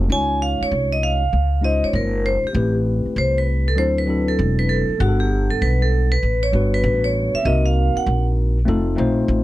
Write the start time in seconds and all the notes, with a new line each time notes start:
0.08 C#2 G#3 C#4 D#4 F4 C#5 G#5
0.42 F5
0.61 C#5, muted upright bass stroke
0.71 C2
0.92 D#5
1.03 F5
1.33 C#2
1.61 G#3 C#4 D#4 F4 C5 D#5
1.83 C#5, muted upright bass stroke
1.93 F#1 A#4
2.26 C5
2.44 G4, muted upright bass stroke
2.53 A1 A3 C4 E4 G4 B4
3.06 muted upright bass stroke
3.16 C2 C5
3.38 B4
3.68 A4
3.76 D2 F#3 C4 D4 E4 A4 C5
3.98 B4
4.06 F#3 C4 D4 E4 A4
4.28 A4
4.39 E1
4.59 B4
4.69 A4
4.89 muted upright bass stroke
4.98 G1 G3 B3 D4 F#4 G#4 F#5
5.08 A4
5.20 G4
5.50 A4, muted upright bass stroke
5.62 B1 B4
5.82 A4
6.12 B4
6.23 A1
6.43 C#5
6.52 G1 G3 B3 D4 F#4 B4
6.74 B4
6.84 A1
7.04 C#5
7.34 E5, muted upright bass stroke
7.43 C2 A#3 C4 D#4 F#4 A#4 D#5
7.66 F5
7.95 F#5, muted upright bass stroke
8.06 A#1
8.65 F1 A3 C4 D#4 F4 A4
8.96 A#1 A3 C4 D#4 F4 C5
9.28 A1